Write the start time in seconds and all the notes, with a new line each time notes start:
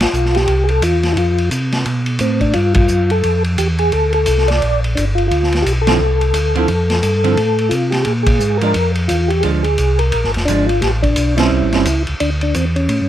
0.00 A1 F4, snare, ride
0.13 B1, hi-hat pedal
0.25 snare
0.35 G4, snare, ride
0.48 C2, ride
0.64 G#4
0.69 A4, ride
0.82 E2 F4, hi-hat pedal, ride
1.03 snare, ride
1.12 F2 E4
1.17 F4, ride
1.38 ride
1.51 C3, hi-hat pedal, ride
1.72 snare, ride
1.86 B2, ride
2.06 ride
2.19 A2 C4, hi-hat pedal, ride
2.41 D4, kick, ride
2.53 G2 F4, ride
2.74 F4, kick, ride
2.88 F#2, hi-hat pedal
3.10 A4, ride
3.23 F2, ride
3.44 ride
3.58 E2 G4, hi-hat pedal, ride
3.78 G#4, ride
3.92 D2 A4, ride
4.13 A4, ride
4.26 C2, hi-hat pedal, ride
4.38 snare
4.48 D5, snare, ride
4.62 A#1, ride
4.84 ride
4.95 G1 D4, hi-hat pedal, ride
5.15 F4, ride
5.28 D2 F4, ride
5.43 snare
5.52 snare, ride
5.62 B1 G4
5.66 hi-hat pedal, ride
5.82 A4
5.87 D3 F3 C4 E4, snare, ride
6.00 C2
6.21 ride
6.33 D2, hi-hat pedal, ride
6.55 D3 F3 C4 E4, ride
6.68 F2, ride
6.90 snare, ride
7.03 G2, hi-hat pedal, ride
7.24 D3 F3 C4 E4, ride
7.37 A2, ride
7.59 ride
7.69 C3 F4, hi-hat pedal, ride
7.90 G4, snare, ride
8.02 G#4, ride
8.07 A#2
8.23 G#4, kick, ride
8.40 G#2, hi-hat pedal
8.57 A#4, ride
8.62 F3 G#3 D4
8.74 F2, ride
8.95 ride
9.08 E2 F4, hi-hat pedal, ride
9.28 G4, ride
9.40 D2 F3 G#3 D4 G#4, ride
9.63 G#4, ride
9.78 C2, hi-hat pedal, ride
9.99 A#4, ride
10.12 A#1, ride
10.24 G#1, snare
10.34 F1, snare, ride
10.45 G#1 F3 D4, hi-hat pedal, ride
10.50 G#3 D4
10.66 F4, ride
10.81 A1 G4, snare, ride
11.02 D4, kick, ride
11.16 B1, hi-hat pedal, ride
11.37 G3 C4 C#4 E4, snare, ride
11.51 C2
11.64 A1
11.72 G1 G3 C4 C#4, snare, ride
11.85 C#2, hi-hat pedal, ride
12.07 C#2, ride
12.20 D2 D4, ride
12.41 D4, ride
12.54 E2 C4, hi-hat pedal, ride
12.76 C#4, ride
12.89 A2, ride
13.02 G2